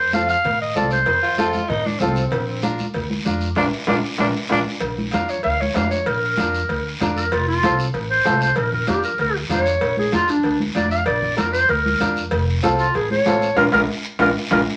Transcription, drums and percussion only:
0.12 high conga loud
0.12 short guiro medium
0.28 short guiro medium
0.45 cowbell medium
0.45 high conga soft
0.45 low conga medium
0.45 long guiro medium
0.75 high conga medium
0.75 short guiro medium
0.90 short guiro medium
1.06 cowbell loud
1.06 high conga soft
1.06 low conga medium
1.06 long guiro medium
1.37 high conga loud
1.37 short guiro medium
1.53 high conga medium
1.53 short guiro medium
1.68 cowbell medium
1.68 high conga soft
1.68 low conga medium
1.68 long guiro medium
1.86 high conga medium
2.00 high conga medium
2.00 low conga medium
2.00 short guiro medium
2.15 short guiro medium
2.31 cowbell loud
2.31 high conga soft
2.31 low conga medium
2.31 long guiro medium
2.62 high conga loud
2.62 short guiro medium
2.78 high conga medium
2.78 short guiro medium
2.94 cowbell medium
2.94 high conga soft
2.94 low conga medium
2.94 long guiro medium
3.10 high conga medium
3.25 high conga medium
3.25 short guiro medium
3.40 short guiro medium
3.55 high conga medium
3.55 high timbale loud
3.55 long guiro medium
3.87 high conga loud
3.87 high timbale loud
3.87 long guiro loud
4.18 high conga medium
4.18 high timbale medium
4.18 long guiro loud
4.49 high conga medium
4.49 high timbale medium
4.49 long guiro medium
4.80 cowbell loud
4.80 high conga soft
4.80 long guiro medium
4.98 high conga medium
5.11 cowbell medium
5.11 high conga loud
5.11 short guiro medium
5.28 short guiro medium
5.43 cowbell medium
5.43 high conga soft
5.43 long guiro medium
5.62 high conga medium
5.74 cowbell medium
5.74 high conga medium
5.74 low timbale medium
5.74 short guiro medium
5.91 short guiro medium
6.06 cowbell loud
6.06 high conga soft
6.06 long guiro medium
6.37 cowbell medium
6.37 high conga loud
6.37 short guiro medium
6.54 short guiro medium
6.69 cowbell medium
6.69 high conga soft
6.69 long guiro medium
7.00 cowbell medium
7.00 high conga medium
7.00 low conga medium
7.00 short guiro medium
7.17 short guiro medium
7.32 cowbell loud
7.32 long guiro medium
7.63 cowbell medium
7.63 high conga loud
7.63 short guiro medium
7.79 short guiro medium
7.94 cowbell medium
7.94 high conga soft
7.94 long guiro medium
8.25 cowbell medium
8.25 high conga medium
8.25 low timbale medium
8.25 short guiro medium
8.41 short guiro medium
8.56 cowbell loud
8.56 high conga soft
8.56 long guiro medium
8.72 low conga medium
8.87 cowbell medium
8.87 high conga loud
8.87 short guiro medium
9.03 short guiro medium
9.18 cowbell medium
9.18 high conga soft
9.18 long guiro medium
9.50 cowbell medium
9.50 high conga medium
9.50 low conga medium
9.50 short guiro medium
9.66 short guiro medium
9.81 cowbell loud
9.81 high conga soft
9.81 long guiro medium
9.97 high conga medium
10.13 cowbell medium
10.13 high conga loud
10.13 short guiro medium
10.28 short guiro medium
10.43 cowbell medium
10.43 high conga soft
10.43 long guiro medium
10.60 high conga medium
10.75 cowbell medium
10.75 high conga medium
10.75 short guiro medium
10.91 short guiro medium
11.06 cowbell loud
11.06 long guiro medium
11.22 low conga medium
11.38 cowbell medium
11.38 high conga loud
11.38 short guiro medium
11.54 short guiro medium
11.69 cowbell medium
11.69 high conga soft
11.69 long guiro medium
11.86 high conga medium
12.00 cowbell medium
12.00 high conga medium
12.00 low conga medium
12.00 short guiro medium
12.16 short guiro medium
12.31 cowbell loud
12.31 high conga soft
12.31 long guiro medium
12.63 cowbell medium
12.63 high conga loud
12.63 short guiro medium
12.78 short guiro medium
12.94 cowbell medium
12.94 high conga soft
12.94 long guiro medium
13.10 high conga medium
13.26 cowbell medium
13.26 high conga medium
13.26 low timbale medium
13.26 short guiro medium
13.41 short guiro medium
13.57 high conga medium
13.57 high timbale loud
13.57 long guiro loud
13.72 high conga loud
13.72 high timbale medium
13.72 long guiro loud
14.19 high conga medium
14.19 high timbale loud
14.19 long guiro loud
14.51 high conga loud
14.51 high timbale loud
14.51 long guiro loud

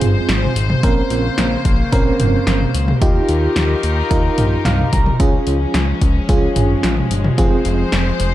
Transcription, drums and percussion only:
0.01 closed hi-hat medium
0.01 mid tom medium
0.29 snare loud
0.29 closed hi-hat medium
0.42 mid tom medium
0.56 closed hi-hat medium
0.70 mid tom medium
0.83 kick loud
0.83 closed hi-hat medium
1.10 closed hi-hat medium
1.38 snare loud
1.38 closed hi-hat medium
1.65 kick medium
1.65 closed hi-hat medium
1.92 kick medium
1.92 closed hi-hat medium
2.20 closed hi-hat medium
2.20 mid tom medium
2.47 snare loud
2.47 closed hi-hat medium
2.61 mid tom medium
2.75 closed hi-hat medium
2.88 mid tom medium
3.02 kick loud
3.02 closed hi-hat medium
3.29 closed hi-hat medium
3.56 snare loud
3.56 closed hi-hat medium
3.83 closed hi-hat medium
4.11 kick loud
4.11 closed hi-hat medium
4.38 closed hi-hat medium
4.38 mid tom medium
4.65 snare loud
4.65 closed hi-hat medium
4.65 mid tom medium
4.79 mid tom medium
4.93 kick medium
4.93 closed hi-hat medium
5.06 mid tom medium
5.20 kick loud
5.20 closed hi-hat medium
5.47 closed hi-hat medium
5.74 snare loud
5.74 closed hi-hat medium
6.01 kick medium
6.01 closed hi-hat medium
6.29 kick loud
6.29 closed hi-hat medium
6.56 closed hi-hat medium
6.56 mid tom loud
6.83 snare loud
6.83 closed hi-hat medium
6.97 mid tom medium
7.11 closed hi-hat medium
7.24 mid tom medium
7.38 kick loud
7.38 closed hi-hat medium
7.65 closed hi-hat medium
7.92 snare loud
7.92 closed hi-hat medium
8.20 closed hi-hat medium

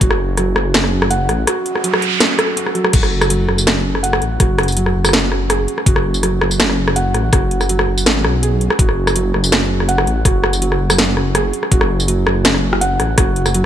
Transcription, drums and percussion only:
0.01 kick loud
0.01 closed hi-hat medium
0.11 cross-stick medium
0.37 cross-stick medium
0.37 closed hi-hat medium
0.56 cross-stick medium
0.74 snare loud
0.74 closed hi-hat medium
0.84 cross-stick medium
1.02 cross-stick medium
1.11 closed hi-hat medium
1.29 cross-stick medium
1.29 closed hi-hat soft
1.47 cross-stick medium
1.47 closed hi-hat medium
1.66 closed hi-hat soft
1.75 cross-stick medium
1.84 closed hi-hat medium
1.94 cross-stick medium
2.02 closed hi-hat soft
2.20 cross-stick medium
2.20 snare loud
2.20 closed hi-hat medium
2.39 cross-stick medium
2.39 closed hi-hat soft
2.57 closed hi-hat medium
2.66 cross-stick medium
2.75 closed hi-hat soft
2.84 cross-stick medium
2.93 kick loud
2.93 closed hi-hat medium
2.93 crash medium
3.03 cross-stick medium
3.21 cross-stick medium
3.21 tambourine soft
3.30 closed hi-hat medium
3.49 cross-stick soft
3.58 tambourine medium
3.67 cross-stick medium
3.67 snare loud
3.67 closed hi-hat medium
3.95 cross-stick soft
4.04 closed hi-hat medium
4.13 cross-stick medium
4.22 closed hi-hat soft
4.40 kick loud
4.40 cross-stick medium
4.40 closed hi-hat medium
4.58 cross-stick medium
4.58 closed hi-hat soft
4.63 closed hi-hat soft
4.68 closed hi-hat soft
4.68 tambourine soft
4.72 closed hi-hat soft
4.77 closed hi-hat medium
4.86 cross-stick medium
5.05 cross-stick medium
5.05 tambourine medium
5.09 cross-stick medium
5.13 cross-stick soft
5.13 snare loud
5.13 closed hi-hat medium
5.18 cross-stick soft
5.32 cross-stick medium
5.50 cross-stick medium
5.50 closed hi-hat medium
5.68 closed hi-hat soft
5.78 cross-stick soft
5.86 kick loud
5.86 closed hi-hat medium
5.96 cross-stick medium
6.14 tambourine soft
6.23 cross-stick soft
6.23 closed hi-hat medium
6.41 cross-stick medium
6.51 tambourine medium
6.60 snare loud
6.60 closed hi-hat medium
6.70 cross-stick soft
6.88 cross-stick medium
6.96 closed hi-hat medium
7.14 cross-stick soft
7.14 closed hi-hat soft
7.33 kick loud
7.33 cross-stick medium
7.33 closed hi-hat medium
7.51 closed hi-hat soft
7.61 cross-stick soft
7.61 tambourine soft
7.69 closed hi-hat medium
7.79 cross-stick medium
7.98 tambourine medium
8.06 cross-stick soft
8.06 snare loud
8.06 closed hi-hat medium
8.24 cross-stick medium
8.43 closed hi-hat medium
8.61 closed hi-hat soft
8.70 cross-stick medium
8.79 kick loud
8.79 closed hi-hat medium
8.89 cross-stick soft
9.07 cross-stick medium
9.07 tambourine soft
9.16 closed hi-hat medium
9.34 cross-stick soft
9.44 tambourine medium
9.52 cross-stick medium
9.52 snare loud
9.52 closed hi-hat medium
9.80 cross-stick soft
9.89 closed hi-hat medium
9.98 cross-stick medium
10.07 closed hi-hat soft
10.25 kick loud
10.25 cross-stick soft
10.25 closed hi-hat medium
10.44 cross-stick medium
10.53 closed hi-hat soft
10.53 tambourine soft
10.62 closed hi-hat medium
10.72 cross-stick soft
10.90 cross-stick medium
10.90 tambourine medium
10.98 snare loud
10.98 closed hi-hat medium
11.17 cross-stick medium
11.35 cross-stick medium
11.35 closed hi-hat medium
11.53 closed hi-hat soft
11.63 cross-stick soft
11.72 kick loud
11.72 closed hi-hat medium
11.81 cross-stick medium
12.00 tambourine soft
12.08 closed hi-hat medium
12.27 cross-stick medium
12.45 snare loud
12.45 closed hi-hat medium
12.54 cross-stick medium
12.73 cross-stick medium
12.81 closed hi-hat medium
13.00 cross-stick medium
13.00 closed hi-hat soft
13.18 kick loud
13.18 cross-stick medium
13.18 closed hi-hat medium
13.36 closed hi-hat soft
13.46 cross-stick medium
13.46 tambourine soft
13.54 closed hi-hat medium

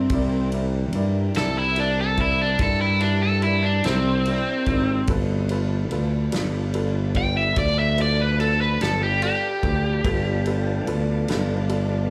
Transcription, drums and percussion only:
0.10 kick loud
0.10 ride medium
0.52 ride medium
0.93 ride medium
1.35 snare loud
1.35 ride medium
1.76 ride medium
2.17 kick medium
2.17 ride medium
2.59 kick loud
2.59 ride medium
3.00 ride medium
3.42 ride soft
3.84 snare loud
3.84 ride medium
4.25 ride medium
4.66 kick medium
4.66 ride soft
5.07 kick loud
5.07 ride medium
5.49 ride medium
5.91 ride medium
6.32 snare loud
6.32 ride medium
6.74 ride medium
7.15 kick medium
7.15 ride medium
7.56 kick loud
7.56 ride medium
7.98 ride medium
8.40 ride medium
8.81 snare loud
8.81 ride medium
9.22 ride medium
9.63 kick medium
9.63 ride medium
10.04 kick loud
10.04 ride medium
10.46 ride medium
10.87 ride medium
11.28 snare loud
11.28 ride medium
11.69 ride medium

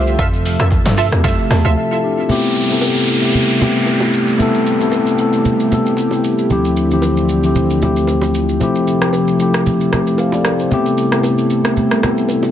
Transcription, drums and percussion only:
0.07 shaker medium
0.19 kick loud
0.19 low conga medium
0.19 shaker medium
0.33 shaker medium
0.46 open hi-hat medium
0.46 shaker medium
0.60 cross-stick loud
0.60 low bongo medium
0.60 shaker medium
0.71 kick loud
0.71 high bongo medium
0.71 shaker medium
0.86 snare medium
0.86 shaker medium
0.98 open hi-hat medium
0.98 shaker loud
1.12 cross-stick loud
1.12 shaker medium
1.24 kick loud
1.24 snare medium
1.24 low conga medium
1.24 shaker medium
1.39 shaker medium
1.51 cross-stick medium
1.51 open hi-hat medium
1.51 low bongo medium
1.51 low conga medium
1.51 shaker medium
1.65 shaker medium
2.29 low conga medium
2.29 shaker medium
2.44 shaker soft
2.56 shaker medium
2.70 shaker medium
2.81 high bongo medium
2.81 shaker medium
2.96 shaker soft
3.08 shaker medium
3.22 shaker medium
3.35 low conga medium
3.35 shaker medium
3.49 shaker medium
3.61 low bongo medium
3.61 low conga medium
3.61 shaker medium
3.76 shaker medium
3.86 high bongo medium
3.86 shaker medium
4.00 low bongo medium
4.00 shaker soft
4.14 shaker loud
4.28 shaker soft
4.40 low conga medium
4.40 shaker medium
4.54 shaker soft
4.66 shaker medium
4.81 shaker medium
4.92 high bongo medium
4.92 shaker medium
5.07 shaker medium
5.19 shaker medium
5.33 shaker soft
5.45 low conga medium
5.45 shaker medium
5.60 shaker medium
5.72 low bongo medium
5.72 low conga medium
5.72 shaker medium
5.86 shaker medium
5.97 high bongo medium
5.97 shaker medium
6.11 low bongo medium
6.11 shaker soft
6.24 shaker loud
6.39 shaker soft
6.50 low conga medium
6.50 shaker medium
6.65 shaker medium
6.77 shaker medium
6.91 shaker medium
7.02 high bongo medium
7.02 shaker medium
7.17 shaker soft
7.29 shaker medium
7.43 shaker medium
7.55 low conga medium
7.55 shaker medium
7.70 shaker medium
7.82 low bongo medium
7.82 low conga medium
7.82 shaker medium
7.97 shaker medium
8.07 high bongo medium
8.07 shaker medium
8.21 low bongo medium
8.21 shaker soft
8.35 shaker loud
8.49 shaker soft
8.61 low conga medium
8.61 shaker medium
8.75 shaker soft
8.87 shaker medium
9.02 cross-stick medium
9.02 shaker medium
9.13 high bongo medium
9.13 shaker medium
9.28 shaker soft
9.40 shaker medium
9.54 cross-stick loud
9.54 shaker medium
9.66 low conga medium
9.66 shaker medium
9.81 shaker medium
9.93 cross-stick medium
9.93 low bongo medium
9.93 low conga medium
9.93 shaker medium
10.07 high bongo soft
10.07 shaker medium
10.18 high bongo medium
10.18 shaker medium
10.32 low bongo medium
10.32 shaker soft
10.45 cross-stick medium
10.45 high bongo soft
10.45 shaker loud
10.60 shaker soft
10.71 low conga medium
10.71 shaker medium
10.86 shaker soft
10.98 shaker medium
11.12 cross-stick medium
11.12 shaker medium
11.23 high bongo medium
11.23 shaker medium
11.38 shaker soft
11.50 shaker medium
11.65 cross-stick loud
11.65 shaker medium
11.77 low conga medium
11.77 shaker medium
11.91 cross-stick medium
11.91 shaker medium
12.03 cross-stick medium
12.03 low bongo medium
12.03 low conga medium
12.03 shaker medium
12.18 shaker medium
12.29 high bongo medium
12.29 shaker medium
12.43 low bongo medium
12.43 shaker soft

